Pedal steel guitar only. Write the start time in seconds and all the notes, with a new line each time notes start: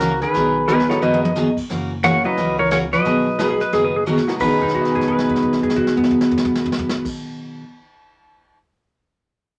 Already playing: F#4 A#4
0.22 G#4 B4
2.04 C#5 F#5
2.25 B4 D#5
2.59 A#4 C#5
2.72 A#4 C#5
2.93 B4 D#5
4.41 B4